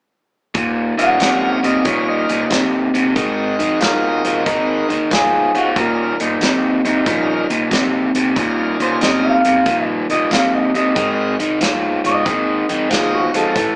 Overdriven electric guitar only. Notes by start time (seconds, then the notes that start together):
0.54 D#2 A#2
0.98 D#2 A#2
1.20 D#2 C3
1.63 D#2 C3
1.85 D#2 A#2
2.29 D#2 A#2
2.50 D#2 C3
2.94 D#2 C3
3.16 G#2 D#3
3.59 G#2 D#3
3.81 G#2 F3
4.25 G#2 F3
4.46 G#2 D#3
4.89 G#2 D#3
5.11 G#2 F3
5.55 G#2 F3
5.76 D#2 A#2
6.20 D#2 A#2
6.41 D#2 C3
6.85 D#2 C3
7.06 D#2 A#2
7.50 D#2 A#2
7.71 D#2 C3
8.15 D#2 C3
8.36 D#2 A#2
8.80 D#2 A#2
9.01 D#2 C3
9.45 D#2 C3
9.67 D#2 A#2
10.10 D#2 A#2
10.31 D#2 C3
10.75 D#2 C3
10.95 G#2 D#3
11.39 G#2 D#3
11.61 G#2 F3
12.04 G#2 F3
12.25 G#2 D#3
12.69 G#2 D#3
12.90 G#2 F3
13.35 G#2 F3
13.56 A2 E3